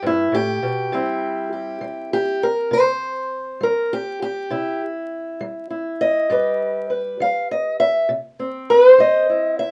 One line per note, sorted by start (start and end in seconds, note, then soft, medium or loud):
0.02 0.32 G2 medium
0.06 0.34 E4 medium
0.32 0.62 A2 medium
0.32 1.51 G4 loud
0.62 0.92 B2 medium
0.92 1.46 C3 medium
0.92 1.81 G3 medium
0.92 6.30 C4 medium
0.92 2.43 E4 medium
1.53 2.13 G4 soft
1.81 2.35 G3 medium
2.13 2.42 G4 loud
2.43 2.72 A#4 loud
2.71 3.25 C3 medium
2.71 3.62 C5 loud
3.61 4.15 G3 medium
3.61 3.92 A#4 medium
3.93 4.21 G4 loud
4.22 4.81 G4 loud
4.50 5.04 C3 medium
4.50 5.69 E4 medium
5.41 5.94 G3 medium
5.70 6.30 E4 soft
6.01 6.90 D#5 loud
6.30 6.83 G2 medium
6.30 7.19 G3 soft
6.30 8.06 G4 medium
6.30 6.89 B4 medium
6.90 8.05 B4 soft
7.20 7.73 G3 medium
7.20 7.50 F5 medium
7.51 7.79 D#5 medium
7.80 8.09 E5 loud
8.09 8.63 C3 medium
8.39 9.71 C4 soft
8.70 8.90 B4 loud
8.90 9.29 C5 loud
8.98 9.52 G3 medium
8.98 9.59 D#5 medium
9.29 9.71 E4 soft
9.59 9.71 E5 medium